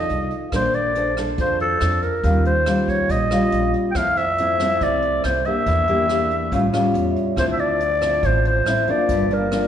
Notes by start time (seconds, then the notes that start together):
Already playing: F3 D#4 A4 D#5
0.09 C2, closed hi-hat
0.31 closed hi-hat
0.52 A#1 A#3 D4 A4 C5, kick, cross-stick, closed hi-hat
0.74 D5, closed hi-hat
0.95 D4 A4 C5, closed hi-hat
1.17 D4 A4 C5, cross-stick, closed hi-hat
1.38 F2 F3 C5, kick, closed hi-hat
1.60 A4, closed hi-hat
1.81 F2 D4 A4 C5, cross-stick, closed hi-hat
2.02 A#4, closed hi-hat
2.23 D#2 D#3 G3 C#4 F4, kick, closed hi-hat
2.45 C5, closed hi-hat
2.66 G3 C#4 F4, cross-stick, closed hi-hat
2.88 C#5, kick, closed hi-hat
3.09 A#1 A#2 D#5, kick, closed hi-hat
3.31 G3 C#4 F4, cross-stick, closed hi-hat
3.52 A#1, closed hi-hat
3.74 closed hi-hat
3.91 F2 G5, cross-stick, closed hi-hat
3.95 F3 A3 C4 E4 F5, kick
4.17 C5 E5, closed hi-hat
4.38 A3 C4 E4 E5, closed hi-hat
4.60 A3 C4 E4, cross-stick, closed hi-hat
4.81 C2 C3 D5, kick, closed hi-hat
5.02 closed hi-hat
5.24 C2 A3 C4 E4 C5, cross-stick, closed hi-hat
5.45 A#3 D4 G4 E5, closed hi-hat
5.66 E2 E3, kick, closed hi-hat
5.88 A#3 D4 G4, closed hi-hat
6.09 A#3 D4 G4, cross-stick, closed hi-hat
6.31 closed hi-hat
6.51 A1 A2 G3 C#4 F4, kick, closed hi-hat
6.73 G3 C#4 F4, cross-stick, closed hi-hat
6.94 E2 C#5, closed hi-hat
7.10 E5
7.16 closed hi-hat
7.36 D2 D3 F3 C4 E4 C5, kick, cross-stick, closed hi-hat
7.53 E5
7.59 D5, closed hi-hat
7.80 closed hi-hat
8.01 F3 C4 E4, cross-stick, closed hi-hat
8.23 A1 A2 C5, kick, closed hi-hat
8.45 C5, closed hi-hat
8.66 A1 F3 C4 E4, cross-stick, closed hi-hat
8.88 F3 A#3 D4 D5, closed hi-hat
9.09 G1 G2, kick, closed hi-hat
9.30 F3 A#3 D4 A#4, closed hi-hat
9.52 F3 A#3 D4, cross-stick, closed hi-hat